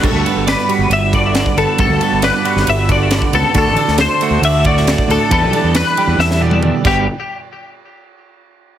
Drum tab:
CC |x---------------|----------------|----------------|--------------x-|
RD |--x-x-x-x-x-x-x-|x-x-x-x-x-x-x-x-|x-x-x-x-x-x-x-x-|x-x-x-x---------|
SD |----o-------o---|----o--o----o---|---oo------oo---|----o---oo------|
T1 |----------------|----------------|----------------|-----------o----|
T2 |----------------|----------------|----------------|------------o---|
BD |o---------o--o--|o---------o--o--|o---------o--o--|o-------------o-|

CC |----------------|
RD |----------------|
SD |----------------|
T1 |----------------|
T2 |----------------|
BD |----------------|